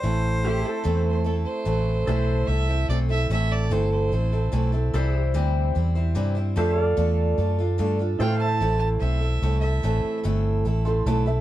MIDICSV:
0, 0, Header, 1, 7, 480
1, 0, Start_track
1, 0, Key_signature, 0, "minor"
1, 0, Tempo, 408441
1, 40, Time_signature, 4, 2, 24, 8
1, 13406, End_track
2, 0, Start_track
2, 0, Title_t, "Fiddle"
2, 0, Program_c, 0, 110
2, 520, Note_on_c, 0, 67, 83
2, 768, Note_on_c, 0, 69, 74
2, 786, Note_off_c, 0, 67, 0
2, 1230, Note_off_c, 0, 69, 0
2, 1259, Note_on_c, 0, 72, 72
2, 1470, Note_off_c, 0, 72, 0
2, 1477, Note_on_c, 0, 69, 76
2, 1586, Note_off_c, 0, 69, 0
2, 1706, Note_on_c, 0, 72, 97
2, 2909, Note_on_c, 0, 76, 102
2, 2927, Note_off_c, 0, 72, 0
2, 3396, Note_off_c, 0, 76, 0
2, 3402, Note_on_c, 0, 74, 90
2, 3510, Note_off_c, 0, 74, 0
2, 3644, Note_on_c, 0, 76, 99
2, 3867, Note_off_c, 0, 76, 0
2, 3901, Note_on_c, 0, 76, 99
2, 4137, Note_on_c, 0, 74, 89
2, 4155, Note_off_c, 0, 76, 0
2, 4377, Note_on_c, 0, 72, 87
2, 4395, Note_off_c, 0, 74, 0
2, 4604, Note_off_c, 0, 72, 0
2, 4611, Note_on_c, 0, 72, 81
2, 5520, Note_off_c, 0, 72, 0
2, 9634, Note_on_c, 0, 79, 96
2, 9844, Note_off_c, 0, 79, 0
2, 9851, Note_on_c, 0, 81, 104
2, 10312, Note_off_c, 0, 81, 0
2, 10330, Note_on_c, 0, 81, 91
2, 10446, Note_off_c, 0, 81, 0
2, 10578, Note_on_c, 0, 76, 88
2, 11262, Note_off_c, 0, 76, 0
2, 11285, Note_on_c, 0, 76, 82
2, 11976, Note_off_c, 0, 76, 0
2, 13406, End_track
3, 0, Start_track
3, 0, Title_t, "Honky-tonk piano"
3, 0, Program_c, 1, 3
3, 9623, Note_on_c, 1, 64, 60
3, 9637, Note_on_c, 1, 69, 59
3, 9641, Note_on_c, 1, 72, 72
3, 12753, Note_on_c, 1, 84, 72
3, 12979, Note_off_c, 1, 84, 0
3, 13010, Note_on_c, 1, 81, 72
3, 13228, Note_off_c, 1, 81, 0
3, 13247, Note_on_c, 1, 76, 67
3, 13406, Note_off_c, 1, 64, 0
3, 13406, Note_off_c, 1, 69, 0
3, 13406, Note_off_c, 1, 72, 0
3, 13406, Note_off_c, 1, 76, 0
3, 13406, End_track
4, 0, Start_track
4, 0, Title_t, "Harmonica"
4, 0, Program_c, 2, 22
4, 0, Note_on_c, 2, 72, 87
4, 1426, Note_off_c, 2, 72, 0
4, 13406, End_track
5, 0, Start_track
5, 0, Title_t, "Pedal steel guitar"
5, 0, Program_c, 3, 26
5, 526, Note_on_c, 3, 67, 67
5, 542, Note_on_c, 3, 72, 65
5, 551, Note_on_c, 3, 76, 69
5, 820, Note_off_c, 3, 67, 0
5, 820, Note_on_c, 3, 69, 67
5, 1950, Note_off_c, 3, 69, 0
5, 1958, Note_off_c, 3, 72, 0
5, 1963, Note_off_c, 3, 76, 0
5, 2438, Note_on_c, 3, 69, 68
5, 2453, Note_on_c, 3, 72, 66
5, 2465, Note_on_c, 3, 76, 67
5, 5768, Note_off_c, 3, 69, 0
5, 5775, Note_off_c, 3, 72, 0
5, 5781, Note_off_c, 3, 76, 0
5, 5808, Note_on_c, 3, 69, 69
5, 5823, Note_on_c, 3, 72, 69
5, 5830, Note_on_c, 3, 76, 70
5, 6102, Note_off_c, 3, 69, 0
5, 6102, Note_on_c, 3, 67, 69
5, 7706, Note_off_c, 3, 67, 0
5, 7715, Note_off_c, 3, 72, 0
5, 7717, Note_off_c, 3, 76, 0
5, 7728, Note_on_c, 3, 67, 68
5, 7737, Note_on_c, 3, 72, 68
5, 7742, Note_on_c, 3, 76, 71
5, 7977, Note_off_c, 3, 76, 0
5, 7977, Note_on_c, 3, 77, 71
5, 8021, Note_off_c, 3, 67, 0
5, 8021, Note_on_c, 3, 69, 68
5, 8031, Note_off_c, 3, 72, 0
5, 8031, Note_on_c, 3, 74, 68
5, 9620, Note_off_c, 3, 69, 0
5, 9630, Note_off_c, 3, 74, 0
5, 9633, Note_off_c, 3, 77, 0
5, 9634, Note_on_c, 3, 69, 64
5, 9644, Note_on_c, 3, 72, 69
5, 9664, Note_on_c, 3, 77, 67
5, 9899, Note_off_c, 3, 77, 0
5, 9899, Note_on_c, 3, 76, 67
5, 13406, Note_off_c, 3, 69, 0
5, 13406, Note_off_c, 3, 72, 0
5, 13406, Note_off_c, 3, 76, 0
5, 13406, End_track
6, 0, Start_track
6, 0, Title_t, "Steel-string acoustic guitar"
6, 0, Program_c, 4, 25
6, 32, Note_on_c, 4, 45, 75
6, 38, Note_on_c, 4, 52, 78
6, 41, Note_on_c, 4, 57, 75
6, 44, Note_on_c, 4, 60, 76
6, 45, Note_on_c, 4, 69, 81
6, 48, Note_on_c, 4, 64, 85
6, 494, Note_off_c, 4, 57, 0
6, 508, Note_on_c, 4, 57, 62
6, 510, Note_off_c, 4, 60, 0
6, 517, Note_off_c, 4, 45, 0
6, 517, Note_off_c, 4, 64, 0
6, 519, Note_off_c, 4, 52, 0
6, 520, Note_off_c, 4, 69, 0
6, 524, Note_on_c, 4, 60, 66
6, 531, Note_on_c, 4, 64, 65
6, 535, Note_on_c, 4, 69, 72
6, 742, Note_off_c, 4, 69, 0
6, 747, Note_off_c, 4, 64, 0
6, 754, Note_off_c, 4, 57, 0
6, 756, Note_off_c, 4, 60, 0
6, 756, Note_on_c, 4, 69, 55
6, 761, Note_on_c, 4, 64, 53
6, 770, Note_on_c, 4, 60, 49
6, 781, Note_on_c, 4, 57, 50
6, 980, Note_off_c, 4, 57, 0
6, 982, Note_on_c, 4, 45, 83
6, 984, Note_off_c, 4, 64, 0
6, 987, Note_on_c, 4, 52, 81
6, 988, Note_off_c, 4, 60, 0
6, 993, Note_off_c, 4, 69, 0
6, 994, Note_on_c, 4, 57, 88
6, 998, Note_on_c, 4, 64, 86
6, 1002, Note_on_c, 4, 60, 81
6, 1007, Note_on_c, 4, 69, 88
6, 1447, Note_off_c, 4, 57, 0
6, 1455, Note_off_c, 4, 60, 0
6, 1461, Note_on_c, 4, 57, 64
6, 1465, Note_off_c, 4, 64, 0
6, 1469, Note_on_c, 4, 60, 64
6, 1471, Note_off_c, 4, 69, 0
6, 1472, Note_off_c, 4, 45, 0
6, 1474, Note_off_c, 4, 52, 0
6, 1479, Note_on_c, 4, 64, 71
6, 1485, Note_on_c, 4, 69, 73
6, 1934, Note_off_c, 4, 57, 0
6, 1940, Note_off_c, 4, 60, 0
6, 1942, Note_on_c, 4, 45, 79
6, 1943, Note_off_c, 4, 64, 0
6, 1943, Note_on_c, 4, 52, 76
6, 1948, Note_off_c, 4, 69, 0
6, 1948, Note_on_c, 4, 57, 75
6, 1954, Note_on_c, 4, 60, 79
6, 1957, Note_on_c, 4, 64, 77
6, 1962, Note_on_c, 4, 69, 78
6, 2421, Note_off_c, 4, 45, 0
6, 2426, Note_off_c, 4, 57, 0
6, 2431, Note_off_c, 4, 52, 0
6, 2435, Note_on_c, 4, 45, 85
6, 2436, Note_on_c, 4, 52, 80
6, 2437, Note_off_c, 4, 60, 0
6, 2437, Note_off_c, 4, 69, 0
6, 2440, Note_on_c, 4, 57, 84
6, 2442, Note_off_c, 4, 64, 0
6, 2442, Note_on_c, 4, 60, 88
6, 2446, Note_on_c, 4, 64, 83
6, 2451, Note_on_c, 4, 69, 82
6, 2902, Note_off_c, 4, 57, 0
6, 2915, Note_off_c, 4, 60, 0
6, 2916, Note_on_c, 4, 57, 54
6, 2919, Note_off_c, 4, 45, 0
6, 2920, Note_on_c, 4, 60, 53
6, 2924, Note_off_c, 4, 69, 0
6, 2926, Note_off_c, 4, 64, 0
6, 2931, Note_on_c, 4, 64, 63
6, 2938, Note_on_c, 4, 69, 62
6, 3143, Note_off_c, 4, 69, 0
6, 3152, Note_off_c, 4, 64, 0
6, 3157, Note_off_c, 4, 60, 0
6, 3157, Note_on_c, 4, 69, 52
6, 3159, Note_off_c, 4, 57, 0
6, 3166, Note_on_c, 4, 64, 48
6, 3171, Note_on_c, 4, 60, 49
6, 3182, Note_on_c, 4, 57, 45
6, 3400, Note_off_c, 4, 69, 0
6, 3401, Note_off_c, 4, 57, 0
6, 3401, Note_off_c, 4, 60, 0
6, 3404, Note_off_c, 4, 52, 0
6, 3404, Note_off_c, 4, 64, 0
6, 3405, Note_on_c, 4, 45, 70
6, 3408, Note_on_c, 4, 52, 76
6, 3415, Note_on_c, 4, 57, 76
6, 3415, Note_on_c, 4, 60, 81
6, 3417, Note_on_c, 4, 64, 74
6, 3420, Note_on_c, 4, 69, 81
6, 3615, Note_off_c, 4, 69, 0
6, 3629, Note_on_c, 4, 69, 54
6, 3630, Note_off_c, 4, 64, 0
6, 3633, Note_off_c, 4, 60, 0
6, 3641, Note_off_c, 4, 57, 0
6, 3644, Note_off_c, 4, 45, 0
6, 3644, Note_on_c, 4, 64, 47
6, 3645, Note_off_c, 4, 52, 0
6, 3647, Note_on_c, 4, 60, 43
6, 3655, Note_on_c, 4, 57, 38
6, 3873, Note_off_c, 4, 57, 0
6, 3876, Note_off_c, 4, 69, 0
6, 3877, Note_off_c, 4, 60, 0
6, 3882, Note_on_c, 4, 45, 80
6, 3883, Note_off_c, 4, 64, 0
6, 3883, Note_on_c, 4, 52, 81
6, 3887, Note_on_c, 4, 57, 87
6, 3891, Note_on_c, 4, 60, 81
6, 3896, Note_on_c, 4, 64, 89
6, 3903, Note_on_c, 4, 69, 87
6, 4336, Note_off_c, 4, 45, 0
6, 4346, Note_off_c, 4, 57, 0
6, 4350, Note_on_c, 4, 45, 75
6, 4352, Note_off_c, 4, 69, 0
6, 4353, Note_off_c, 4, 52, 0
6, 4358, Note_on_c, 4, 52, 77
6, 4360, Note_on_c, 4, 57, 78
6, 4361, Note_off_c, 4, 60, 0
6, 4365, Note_off_c, 4, 64, 0
6, 4366, Note_on_c, 4, 60, 74
6, 4366, Note_on_c, 4, 69, 85
6, 4369, Note_on_c, 4, 64, 90
6, 4824, Note_off_c, 4, 57, 0
6, 4836, Note_off_c, 4, 45, 0
6, 4838, Note_on_c, 4, 57, 57
6, 4840, Note_off_c, 4, 69, 0
6, 4841, Note_off_c, 4, 60, 0
6, 4844, Note_off_c, 4, 64, 0
6, 4846, Note_on_c, 4, 60, 56
6, 4848, Note_on_c, 4, 64, 66
6, 4854, Note_on_c, 4, 69, 67
6, 5064, Note_off_c, 4, 69, 0
6, 5069, Note_off_c, 4, 64, 0
6, 5078, Note_on_c, 4, 69, 56
6, 5079, Note_off_c, 4, 60, 0
6, 5081, Note_off_c, 4, 57, 0
6, 5083, Note_on_c, 4, 64, 50
6, 5093, Note_on_c, 4, 60, 49
6, 5103, Note_on_c, 4, 57, 44
6, 5306, Note_off_c, 4, 57, 0
6, 5307, Note_off_c, 4, 60, 0
6, 5310, Note_on_c, 4, 45, 86
6, 5312, Note_off_c, 4, 52, 0
6, 5312, Note_off_c, 4, 64, 0
6, 5316, Note_off_c, 4, 69, 0
6, 5317, Note_on_c, 4, 52, 90
6, 5320, Note_on_c, 4, 57, 86
6, 5321, Note_on_c, 4, 60, 88
6, 5326, Note_on_c, 4, 64, 92
6, 5330, Note_on_c, 4, 69, 91
6, 5534, Note_off_c, 4, 69, 0
6, 5544, Note_off_c, 4, 64, 0
6, 5548, Note_on_c, 4, 69, 59
6, 5555, Note_off_c, 4, 60, 0
6, 5556, Note_off_c, 4, 45, 0
6, 5558, Note_on_c, 4, 64, 59
6, 5560, Note_off_c, 4, 52, 0
6, 5562, Note_off_c, 4, 57, 0
6, 5569, Note_on_c, 4, 60, 52
6, 5574, Note_on_c, 4, 57, 49
6, 5796, Note_off_c, 4, 69, 0
6, 5800, Note_off_c, 4, 60, 0
6, 5800, Note_on_c, 4, 48, 87
6, 5801, Note_off_c, 4, 64, 0
6, 5804, Note_on_c, 4, 52, 89
6, 5805, Note_off_c, 4, 57, 0
6, 5810, Note_on_c, 4, 55, 94
6, 5814, Note_on_c, 4, 60, 89
6, 5816, Note_on_c, 4, 64, 93
6, 5817, Note_on_c, 4, 72, 99
6, 6262, Note_off_c, 4, 48, 0
6, 6264, Note_off_c, 4, 52, 0
6, 6269, Note_off_c, 4, 55, 0
6, 6269, Note_off_c, 4, 60, 0
6, 6274, Note_off_c, 4, 64, 0
6, 6276, Note_on_c, 4, 48, 91
6, 6278, Note_on_c, 4, 52, 87
6, 6279, Note_off_c, 4, 72, 0
6, 6283, Note_on_c, 4, 55, 89
6, 6284, Note_on_c, 4, 60, 97
6, 6288, Note_on_c, 4, 64, 90
6, 6293, Note_on_c, 4, 72, 91
6, 6743, Note_off_c, 4, 55, 0
6, 6751, Note_off_c, 4, 60, 0
6, 6756, Note_off_c, 4, 64, 0
6, 6757, Note_on_c, 4, 55, 61
6, 6760, Note_off_c, 4, 48, 0
6, 6761, Note_off_c, 4, 52, 0
6, 6765, Note_on_c, 4, 60, 69
6, 6768, Note_off_c, 4, 72, 0
6, 6770, Note_on_c, 4, 64, 65
6, 6783, Note_on_c, 4, 72, 71
6, 6982, Note_off_c, 4, 72, 0
6, 6993, Note_off_c, 4, 64, 0
6, 6996, Note_on_c, 4, 72, 62
6, 7000, Note_off_c, 4, 55, 0
6, 7001, Note_off_c, 4, 60, 0
6, 7007, Note_on_c, 4, 64, 57
6, 7015, Note_on_c, 4, 60, 56
6, 7020, Note_on_c, 4, 55, 48
6, 7219, Note_off_c, 4, 55, 0
6, 7223, Note_off_c, 4, 60, 0
6, 7223, Note_off_c, 4, 64, 0
6, 7225, Note_on_c, 4, 48, 92
6, 7229, Note_off_c, 4, 72, 0
6, 7229, Note_on_c, 4, 52, 90
6, 7233, Note_on_c, 4, 55, 92
6, 7237, Note_on_c, 4, 60, 81
6, 7237, Note_on_c, 4, 64, 93
6, 7243, Note_on_c, 4, 72, 104
6, 7447, Note_off_c, 4, 72, 0
6, 7461, Note_on_c, 4, 72, 64
6, 7464, Note_off_c, 4, 64, 0
6, 7468, Note_off_c, 4, 60, 0
6, 7474, Note_off_c, 4, 48, 0
6, 7476, Note_off_c, 4, 52, 0
6, 7478, Note_off_c, 4, 55, 0
6, 7478, Note_on_c, 4, 64, 55
6, 7483, Note_on_c, 4, 60, 57
6, 7490, Note_on_c, 4, 55, 46
6, 7702, Note_off_c, 4, 55, 0
6, 7705, Note_on_c, 4, 50, 88
6, 7707, Note_on_c, 4, 57, 86
6, 7711, Note_off_c, 4, 60, 0
6, 7712, Note_off_c, 4, 72, 0
6, 7714, Note_off_c, 4, 64, 0
6, 7716, Note_on_c, 4, 62, 99
6, 7719, Note_on_c, 4, 65, 90
6, 7722, Note_on_c, 4, 69, 101
6, 8175, Note_off_c, 4, 50, 0
6, 8180, Note_off_c, 4, 62, 0
6, 8182, Note_off_c, 4, 57, 0
6, 8183, Note_off_c, 4, 65, 0
6, 8187, Note_on_c, 4, 57, 85
6, 8190, Note_on_c, 4, 50, 84
6, 8194, Note_on_c, 4, 62, 92
6, 8197, Note_on_c, 4, 65, 97
6, 8201, Note_off_c, 4, 69, 0
6, 8206, Note_on_c, 4, 69, 98
6, 8663, Note_off_c, 4, 62, 0
6, 8664, Note_off_c, 4, 57, 0
6, 8669, Note_on_c, 4, 57, 66
6, 8671, Note_off_c, 4, 65, 0
6, 8676, Note_off_c, 4, 50, 0
6, 8678, Note_on_c, 4, 62, 65
6, 8685, Note_on_c, 4, 65, 73
6, 8688, Note_off_c, 4, 69, 0
6, 8692, Note_on_c, 4, 69, 73
6, 8900, Note_off_c, 4, 69, 0
6, 8914, Note_off_c, 4, 65, 0
6, 8915, Note_on_c, 4, 69, 64
6, 8916, Note_off_c, 4, 57, 0
6, 8920, Note_off_c, 4, 62, 0
6, 8928, Note_on_c, 4, 65, 57
6, 8942, Note_on_c, 4, 62, 47
6, 9140, Note_off_c, 4, 62, 0
6, 9143, Note_on_c, 4, 50, 89
6, 9148, Note_off_c, 4, 65, 0
6, 9151, Note_off_c, 4, 69, 0
6, 9152, Note_on_c, 4, 57, 83
6, 9155, Note_on_c, 4, 62, 89
6, 9162, Note_on_c, 4, 65, 92
6, 9165, Note_on_c, 4, 69, 93
6, 9378, Note_off_c, 4, 69, 0
6, 9391, Note_off_c, 4, 65, 0
6, 9392, Note_on_c, 4, 69, 57
6, 9393, Note_off_c, 4, 50, 0
6, 9397, Note_off_c, 4, 57, 0
6, 9399, Note_off_c, 4, 62, 0
6, 9405, Note_on_c, 4, 65, 55
6, 9418, Note_on_c, 4, 62, 45
6, 9635, Note_on_c, 4, 45, 81
6, 9637, Note_off_c, 4, 69, 0
6, 9637, Note_on_c, 4, 52, 79
6, 9639, Note_off_c, 4, 62, 0
6, 9642, Note_off_c, 4, 65, 0
6, 9644, Note_on_c, 4, 60, 83
6, 9645, Note_on_c, 4, 57, 75
6, 9647, Note_on_c, 4, 64, 81
6, 9653, Note_on_c, 4, 69, 88
6, 10096, Note_off_c, 4, 45, 0
6, 10109, Note_off_c, 4, 57, 0
6, 10110, Note_off_c, 4, 52, 0
6, 10110, Note_on_c, 4, 45, 75
6, 10115, Note_on_c, 4, 52, 69
6, 10121, Note_off_c, 4, 69, 0
6, 10122, Note_off_c, 4, 60, 0
6, 10122, Note_off_c, 4, 64, 0
6, 10123, Note_on_c, 4, 57, 76
6, 10126, Note_on_c, 4, 64, 86
6, 10127, Note_on_c, 4, 60, 77
6, 10135, Note_on_c, 4, 69, 87
6, 10568, Note_off_c, 4, 57, 0
6, 10582, Note_on_c, 4, 57, 61
6, 10592, Note_off_c, 4, 60, 0
6, 10593, Note_off_c, 4, 69, 0
6, 10596, Note_off_c, 4, 45, 0
6, 10596, Note_on_c, 4, 60, 61
6, 10598, Note_off_c, 4, 64, 0
6, 10602, Note_on_c, 4, 64, 58
6, 10607, Note_on_c, 4, 69, 63
6, 10808, Note_off_c, 4, 69, 0
6, 10821, Note_off_c, 4, 64, 0
6, 10822, Note_on_c, 4, 69, 51
6, 10827, Note_off_c, 4, 60, 0
6, 10832, Note_off_c, 4, 57, 0
6, 10835, Note_on_c, 4, 64, 46
6, 10841, Note_on_c, 4, 60, 46
6, 10847, Note_on_c, 4, 57, 45
6, 11066, Note_off_c, 4, 57, 0
6, 11072, Note_off_c, 4, 60, 0
6, 11072, Note_off_c, 4, 69, 0
6, 11073, Note_off_c, 4, 64, 0
6, 11073, Note_on_c, 4, 45, 74
6, 11074, Note_off_c, 4, 52, 0
6, 11079, Note_on_c, 4, 52, 79
6, 11080, Note_on_c, 4, 57, 71
6, 11086, Note_on_c, 4, 60, 78
6, 11086, Note_on_c, 4, 69, 89
6, 11087, Note_on_c, 4, 64, 82
6, 11300, Note_off_c, 4, 69, 0
6, 11310, Note_off_c, 4, 64, 0
6, 11314, Note_on_c, 4, 69, 48
6, 11317, Note_off_c, 4, 45, 0
6, 11320, Note_off_c, 4, 52, 0
6, 11320, Note_off_c, 4, 60, 0
6, 11321, Note_off_c, 4, 57, 0
6, 11324, Note_on_c, 4, 64, 52
6, 11334, Note_on_c, 4, 60, 43
6, 11339, Note_on_c, 4, 57, 40
6, 11547, Note_off_c, 4, 57, 0
6, 11553, Note_off_c, 4, 64, 0
6, 11554, Note_on_c, 4, 45, 82
6, 11556, Note_off_c, 4, 60, 0
6, 11558, Note_off_c, 4, 69, 0
6, 11561, Note_on_c, 4, 57, 82
6, 11562, Note_on_c, 4, 52, 85
6, 11567, Note_on_c, 4, 64, 90
6, 11570, Note_on_c, 4, 60, 85
6, 11573, Note_on_c, 4, 69, 83
6, 12014, Note_off_c, 4, 45, 0
6, 12025, Note_off_c, 4, 57, 0
6, 12028, Note_off_c, 4, 52, 0
6, 12028, Note_on_c, 4, 45, 83
6, 12033, Note_on_c, 4, 52, 89
6, 12034, Note_off_c, 4, 69, 0
6, 12037, Note_off_c, 4, 60, 0
6, 12039, Note_on_c, 4, 57, 88
6, 12041, Note_off_c, 4, 64, 0
6, 12042, Note_on_c, 4, 60, 93
6, 12045, Note_on_c, 4, 64, 103
6, 12049, Note_on_c, 4, 69, 102
6, 12502, Note_off_c, 4, 57, 0
6, 12514, Note_off_c, 4, 45, 0
6, 12516, Note_on_c, 4, 57, 67
6, 12517, Note_off_c, 4, 60, 0
6, 12521, Note_on_c, 4, 60, 66
6, 12524, Note_off_c, 4, 64, 0
6, 12524, Note_off_c, 4, 69, 0
6, 12528, Note_on_c, 4, 64, 70
6, 12538, Note_on_c, 4, 69, 80
6, 12737, Note_off_c, 4, 69, 0
6, 12748, Note_off_c, 4, 64, 0
6, 12751, Note_on_c, 4, 69, 61
6, 12756, Note_off_c, 4, 60, 0
6, 12758, Note_off_c, 4, 57, 0
6, 12762, Note_on_c, 4, 64, 57
6, 12770, Note_on_c, 4, 60, 54
6, 12778, Note_on_c, 4, 57, 56
6, 12992, Note_off_c, 4, 57, 0
6, 12994, Note_off_c, 4, 64, 0
6, 12995, Note_off_c, 4, 69, 0
6, 12996, Note_off_c, 4, 60, 0
6, 13001, Note_off_c, 4, 52, 0
6, 13001, Note_on_c, 4, 45, 88
6, 13006, Note_on_c, 4, 52, 93
6, 13006, Note_on_c, 4, 57, 92
6, 13008, Note_on_c, 4, 64, 94
6, 13010, Note_on_c, 4, 60, 93
6, 13020, Note_on_c, 4, 69, 97
6, 13215, Note_off_c, 4, 69, 0
6, 13225, Note_off_c, 4, 64, 0
6, 13229, Note_on_c, 4, 69, 58
6, 13235, Note_off_c, 4, 60, 0
6, 13239, Note_on_c, 4, 64, 56
6, 13240, Note_off_c, 4, 45, 0
6, 13242, Note_off_c, 4, 52, 0
6, 13243, Note_off_c, 4, 57, 0
6, 13249, Note_on_c, 4, 60, 54
6, 13260, Note_on_c, 4, 57, 51
6, 13406, Note_off_c, 4, 57, 0
6, 13406, Note_off_c, 4, 60, 0
6, 13406, Note_off_c, 4, 64, 0
6, 13406, Note_off_c, 4, 69, 0
6, 13406, End_track
7, 0, Start_track
7, 0, Title_t, "Fingered electric bass"
7, 0, Program_c, 5, 33
7, 41, Note_on_c, 5, 33, 83
7, 736, Note_off_c, 5, 33, 0
7, 1001, Note_on_c, 5, 40, 78
7, 1697, Note_off_c, 5, 40, 0
7, 1952, Note_on_c, 5, 33, 81
7, 2422, Note_off_c, 5, 33, 0
7, 2441, Note_on_c, 5, 35, 89
7, 2908, Note_off_c, 5, 35, 0
7, 2914, Note_on_c, 5, 36, 79
7, 3384, Note_off_c, 5, 36, 0
7, 3394, Note_on_c, 5, 35, 86
7, 3864, Note_off_c, 5, 35, 0
7, 3877, Note_on_c, 5, 33, 79
7, 4345, Note_off_c, 5, 33, 0
7, 4356, Note_on_c, 5, 31, 90
7, 4825, Note_off_c, 5, 31, 0
7, 4840, Note_on_c, 5, 33, 82
7, 5307, Note_off_c, 5, 33, 0
7, 5322, Note_on_c, 5, 35, 89
7, 5788, Note_off_c, 5, 35, 0
7, 5802, Note_on_c, 5, 36, 78
7, 6268, Note_off_c, 5, 36, 0
7, 6285, Note_on_c, 5, 38, 91
7, 6750, Note_off_c, 5, 38, 0
7, 6767, Note_on_c, 5, 40, 82
7, 7231, Note_off_c, 5, 40, 0
7, 7236, Note_on_c, 5, 43, 95
7, 7705, Note_off_c, 5, 43, 0
7, 7715, Note_on_c, 5, 41, 83
7, 8185, Note_off_c, 5, 41, 0
7, 8198, Note_on_c, 5, 40, 88
7, 8666, Note_off_c, 5, 40, 0
7, 8673, Note_on_c, 5, 42, 85
7, 9144, Note_off_c, 5, 42, 0
7, 9160, Note_on_c, 5, 43, 85
7, 9627, Note_off_c, 5, 43, 0
7, 9633, Note_on_c, 5, 45, 78
7, 10103, Note_off_c, 5, 45, 0
7, 10117, Note_on_c, 5, 33, 89
7, 10585, Note_off_c, 5, 33, 0
7, 10594, Note_on_c, 5, 35, 78
7, 11063, Note_off_c, 5, 35, 0
7, 11073, Note_on_c, 5, 36, 88
7, 11542, Note_off_c, 5, 36, 0
7, 11562, Note_on_c, 5, 33, 82
7, 11784, Note_off_c, 5, 33, 0
7, 12046, Note_on_c, 5, 31, 91
7, 12508, Note_off_c, 5, 31, 0
7, 12520, Note_on_c, 5, 33, 87
7, 12985, Note_off_c, 5, 33, 0
7, 12999, Note_on_c, 5, 35, 95
7, 13406, Note_off_c, 5, 35, 0
7, 13406, End_track
0, 0, End_of_file